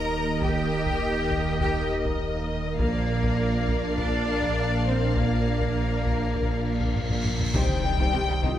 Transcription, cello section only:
0, 0, Header, 1, 2, 480
1, 0, Start_track
1, 0, Tempo, 594059
1, 338, Time_signature, 4, 2, 24, 8
1, 6937, End_track
2, 0, Start_track
2, 0, Title_t, "Cello section"
2, 0, Program_c, 0, 48
2, 0, Note_on_c, 0, 70, 90
2, 317, Note_off_c, 0, 70, 0
2, 337, Note_on_c, 0, 67, 92
2, 1278, Note_off_c, 0, 67, 0
2, 1297, Note_on_c, 0, 67, 81
2, 1532, Note_off_c, 0, 67, 0
2, 2254, Note_on_c, 0, 58, 84
2, 3184, Note_off_c, 0, 58, 0
2, 3218, Note_on_c, 0, 62, 93
2, 3924, Note_off_c, 0, 62, 0
2, 3941, Note_on_c, 0, 60, 70
2, 4174, Note_off_c, 0, 60, 0
2, 4176, Note_on_c, 0, 58, 72
2, 5857, Note_off_c, 0, 58, 0
2, 6098, Note_on_c, 0, 48, 73
2, 6146, Note_off_c, 0, 48, 0
2, 6341, Note_on_c, 0, 48, 48
2, 6388, Note_off_c, 0, 48, 0
2, 6457, Note_on_c, 0, 48, 67
2, 6505, Note_off_c, 0, 48, 0
2, 6579, Note_on_c, 0, 48, 56
2, 6627, Note_off_c, 0, 48, 0
2, 6696, Note_on_c, 0, 48, 55
2, 6744, Note_off_c, 0, 48, 0
2, 6822, Note_on_c, 0, 48, 72
2, 6869, Note_off_c, 0, 48, 0
2, 6937, End_track
0, 0, End_of_file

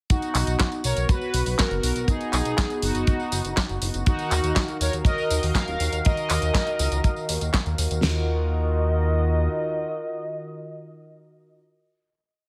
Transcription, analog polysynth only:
0, 0, Header, 1, 2, 480
1, 0, Start_track
1, 0, Key_signature, -6, "minor"
1, 0, Tempo, 495868
1, 97, Time_signature, 4, 2, 24, 8
1, 12081, End_track
2, 0, Start_track
2, 0, Title_t, "Analog polysynth"
2, 0, Program_c, 0, 90
2, 97, Note_on_c, 0, 66, 108
2, 104, Note_on_c, 0, 63, 84
2, 782, Note_off_c, 0, 63, 0
2, 819, Note_on_c, 0, 73, 105
2, 826, Note_on_c, 0, 70, 84
2, 838, Note_off_c, 0, 66, 0
2, 1041, Note_off_c, 0, 73, 0
2, 1045, Note_off_c, 0, 70, 0
2, 1059, Note_on_c, 0, 71, 109
2, 1066, Note_on_c, 0, 66, 81
2, 1508, Note_off_c, 0, 66, 0
2, 1538, Note_on_c, 0, 70, 107
2, 1546, Note_on_c, 0, 66, 84
2, 1552, Note_off_c, 0, 71, 0
2, 1988, Note_off_c, 0, 66, 0
2, 2019, Note_on_c, 0, 68, 110
2, 2026, Note_on_c, 0, 63, 89
2, 2032, Note_off_c, 0, 70, 0
2, 2702, Note_off_c, 0, 63, 0
2, 2742, Note_on_c, 0, 66, 94
2, 2749, Note_on_c, 0, 63, 70
2, 2759, Note_off_c, 0, 68, 0
2, 3661, Note_off_c, 0, 66, 0
2, 3664, Note_off_c, 0, 63, 0
2, 3938, Note_on_c, 0, 66, 105
2, 3943, Note_on_c, 0, 63, 86
2, 4618, Note_off_c, 0, 66, 0
2, 4621, Note_off_c, 0, 63, 0
2, 4658, Note_on_c, 0, 73, 94
2, 4663, Note_on_c, 0, 70, 74
2, 4765, Note_off_c, 0, 73, 0
2, 4769, Note_off_c, 0, 70, 0
2, 4896, Note_on_c, 0, 75, 105
2, 4903, Note_on_c, 0, 70, 88
2, 5347, Note_off_c, 0, 70, 0
2, 5379, Note_on_c, 0, 77, 114
2, 5386, Note_on_c, 0, 70, 93
2, 5391, Note_off_c, 0, 75, 0
2, 5828, Note_off_c, 0, 70, 0
2, 5858, Note_on_c, 0, 75, 119
2, 5866, Note_on_c, 0, 70, 93
2, 5872, Note_off_c, 0, 77, 0
2, 7499, Note_off_c, 0, 75, 0
2, 7503, Note_off_c, 0, 70, 0
2, 7777, Note_on_c, 0, 75, 109
2, 11227, Note_off_c, 0, 75, 0
2, 12081, End_track
0, 0, End_of_file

